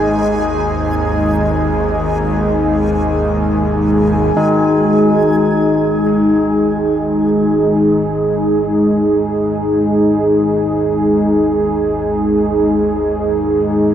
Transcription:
0.00 4.36 G#1 medium
0.00 4.37 D#2 medium
0.00 13.95 G#3 medium
0.00 13.95 D#4 medium
0.00 13.95 G#4 medium
0.00 4.39 G#5 medium
4.37 13.95 G#1 medium
4.37 13.95 D#2 medium
4.37 11.16 D#4 medium

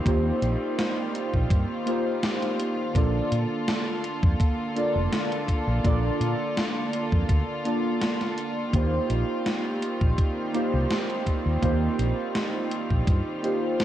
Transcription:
0.00 2.91 D#3 medium
0.00 2.91 G3 medium
0.00 0.05 A#3 medium
0.00 2.91 C4 medium
0.00 0.06 D#4 medium
0.00 0.06 F4 medium
0.00 13.85 F4 medium
0.00 0.07 G4 medium
0.00 0.08 C5 loud
0.05 0.30 D#2 loud
0.05 1.82 A#3 medium
0.05 1.83 D#4 medium
0.05 1.83 F4 medium
0.05 1.83 G4 medium
0.05 1.84 C5 loud
0.05 kick loud
0.05 closed hi-hat medium
0.42 0.55 A#1 medium
0.42 closed hi-hat medium
0.79 snare loud
0.79 closed hi-hat medium
1.15 closed hi-hat medium
1.34 1.45 A#1 medium
1.34 kick medium
1.50 1.63 G2 loud
1.50 kick loud
1.50 closed hi-hat medium
1.86 2.91 A#3 medium
1.86 2.91 D#4 medium
1.86 2.91 F4 medium
1.86 2.92 G4 medium
1.86 2.92 C5 medium
1.86 closed hi-hat medium
2.23 snare loud
2.23 closed hi-hat medium
2.42 snare soft
2.42 closed hi-hat soft
2.60 closed hi-hat medium
2.94 3.20 A#1 loud
2.94 8.70 D3 medium
2.94 4.71 A#3 medium
2.94 8.70 A#3 medium
2.94 4.72 D4 medium
2.94 4.72 F4 medium
2.94 8.70 A4 medium
2.94 4.73 A4 medium
2.94 4.73 D5 loud
2.94 kick loud
2.94 closed hi-hat medium
3.32 3.44 A#2 medium
3.32 closed hi-hat medium
3.68 snare loud
3.68 closed hi-hat medium
4.04 closed hi-hat medium
4.23 4.34 F2 medium
4.23 kick loud
4.40 kick loud
4.40 closed hi-hat medium
4.75 5.80 A#3 medium
4.75 5.80 D4 medium
4.75 5.81 F4 medium
4.75 5.81 A4 medium
4.75 5.81 D5 loud
4.75 closed hi-hat medium
4.96 5.06 F1 medium
5.13 snare loud
5.13 closed hi-hat medium
5.32 closed hi-hat soft
5.48 kick medium
5.48 closed hi-hat medium
5.68 5.79 A#1 medium
5.83 6.09 A#1 loud
5.83 7.61 A#3 loud
5.83 7.61 D4 medium
5.83 7.61 F4 medium
5.83 7.62 A4 medium
5.83 7.62 D5 loud
5.83 kick loud
5.83 closed hi-hat medium
6.21 6.33 A#2 medium
6.21 closed hi-hat medium
6.57 snare loud
6.57 closed hi-hat medium
6.93 closed hi-hat medium
7.12 7.23 F2 medium
7.12 kick medium
7.29 7.42 D2 medium
7.29 kick loud
7.29 closed hi-hat medium
7.64 8.69 A#3 medium
7.64 8.69 D4 medium
7.64 8.70 F4 medium
7.64 8.70 A4 medium
7.64 8.71 D5 loud
7.64 closed hi-hat medium
8.02 snare loud
8.02 closed hi-hat medium
8.21 snare soft
8.21 closed hi-hat soft
8.38 closed hi-hat medium
8.72 8.98 D#2 loud
8.72 13.85 D#3 medium
8.72 13.85 G3 medium
8.72 10.50 A#3 loud
8.72 13.85 C4 medium
8.72 10.50 D#4 medium
8.72 10.51 F4 medium
8.72 10.51 G4 medium
8.72 10.51 C5 loud
8.72 kick loud
8.72 closed hi-hat medium
9.10 9.22 A#1 medium
9.10 closed hi-hat medium
9.46 snare loud
9.46 closed hi-hat medium
9.82 closed hi-hat medium
10.01 10.12 A#1 medium
10.01 kick loud
10.18 kick loud
10.18 closed hi-hat medium
10.53 11.58 A#3 medium
10.53 11.59 D#4 medium
10.53 11.59 F4 medium
10.53 11.59 G4 medium
10.53 11.60 C5 loud
10.53 closed hi-hat medium
10.74 10.85 C2 medium
10.91 snare loud
10.91 closed hi-hat medium
11.10 closed hi-hat soft
11.26 kick medium
11.26 closed hi-hat medium
11.46 11.57 D#2 medium
11.61 11.87 D#2 loud
11.61 13.39 A#3 loud
11.61 13.39 D#4 medium
11.61 13.40 F4 medium
11.61 13.40 G4 medium
11.61 13.40 C5 loud
11.61 kick loud
11.61 closed hi-hat medium
11.99 12.12 A#1 medium
11.99 closed hi-hat medium
12.35 snare loud
12.35 closed hi-hat medium
12.71 closed hi-hat medium
12.90 13.01 A#1 medium
12.90 kick medium
13.07 13.20 G2 medium
13.07 kick loud
13.07 closed hi-hat medium
13.42 13.85 A#3 medium
13.42 13.85 D#4 medium
13.42 13.85 F4 medium
13.42 13.85 G4 medium
13.42 13.85 C5 loud
13.42 closed hi-hat medium
13.80 snare loud
13.80 closed hi-hat medium

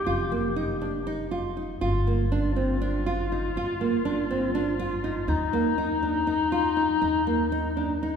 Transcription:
0.00 1.53 G4 loud
0.06 1.79 F1 medium
0.06 0.25 F4 medium
0.32 0.51 A#3 medium
0.56 0.75 D#4 medium
0.81 1.01 D4 medium
1.07 1.26 D#4 medium
1.31 1.51 F4 medium
1.57 1.76 D#4 medium
1.81 3.52 G1 medium
1.81 2.01 F4 medium
1.81 5.31 F4 loud
2.07 2.26 A#3 medium
2.32 2.51 D4 medium
2.56 2.75 C4 medium
2.81 3.00 D4 medium
3.06 3.25 F4 medium
3.32 3.50 D#4 medium
3.56 5.25 G1 medium
3.56 3.75 F4 medium
3.81 3.99 A#3 medium
4.05 4.24 D4 medium
4.30 4.49 C4 medium
4.55 4.73 D4 medium
4.79 4.98 F4 medium
5.04 5.23 D#4 medium
5.27 6.98 D#2 medium
5.27 5.47 D#4 medium
5.27 8.16 D#4 loud
5.53 5.72 A#3 medium
5.78 5.97 D#4 medium
6.02 6.21 D4 medium
6.27 6.46 D#4 medium
6.52 6.71 F4 medium
6.77 6.96 D#4 medium
7.01 8.16 D#2 medium
7.01 7.21 D#4 medium
7.27 7.46 A#3 medium
7.52 7.71 D#4 medium
7.77 7.96 D4 medium
8.03 8.16 D#4 medium

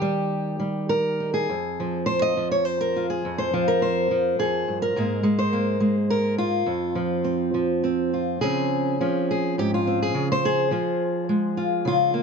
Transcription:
0.00 1.46 D#3 medium
0.00 0.59 G3 medium
0.00 1.50 A#3 soft
0.00 0.89 G4 medium
0.60 1.52 G3 medium
0.89 1.33 A#4 medium
1.20 1.46 D#4 soft
1.34 2.06 G#4 medium
1.49 3.24 F2 medium
1.80 2.37 F3 medium
2.06 2.21 C5 loud
2.22 2.51 D#5 loud
2.37 3.52 F3 medium
2.51 2.65 C#5 medium
2.65 3.37 C5 medium
2.81 3.10 A#4 medium
2.96 3.21 F4 soft
3.10 3.67 G#4 medium
3.25 4.38 F2 medium
3.38 3.81 C5 medium
3.54 4.10 F3 medium
3.68 4.39 A#4 medium
3.82 4.95 C5 loud
4.11 4.96 F3 medium
4.39 4.67 F2 medium
4.39 4.81 G#4 medium
4.68 4.96 G2 medium
4.82 5.94 A#4 medium
4.96 6.63 G#2 medium
4.96 5.22 G#3 soft
4.96 5.52 A#3 soft
5.23 5.79 G#3 medium
5.39 6.09 C5 medium
5.53 6.66 A#3 medium
5.80 6.62 G#3 medium
6.10 6.38 A#4 loud
6.38 8.12 F4 medium
6.66 8.42 F2 medium
6.95 7.53 F3 medium
7.24 7.82 C4 soft
7.54 8.41 F3 medium
7.84 8.39 C4 soft
8.14 8.39 F4 soft
8.41 9.00 C#3 medium
8.41 9.00 F3 soft
8.41 9.86 C4 soft
8.41 9.01 C#4 soft
8.41 9.28 G#4 medium
9.01 10.71 F3 medium
9.01 10.35 C#4 soft
9.31 9.58 G#4 medium
9.58 10.11 G#2 medium
9.58 9.73 G4 medium
9.74 10.01 F4 medium
9.87 10.12 C4 soft
10.02 10.30 G#4 medium
10.14 10.71 C#3 medium
10.32 11.01 C5 loud
10.45 11.86 G#4 medium
10.71 12.23 F3 medium
10.71 11.57 F4 soft
11.29 12.17 G#3 medium
11.57 11.87 F4 soft
11.85 12.23 C#3 medium
11.85 12.23 F4 medium
12.14 12.23 A#3 soft

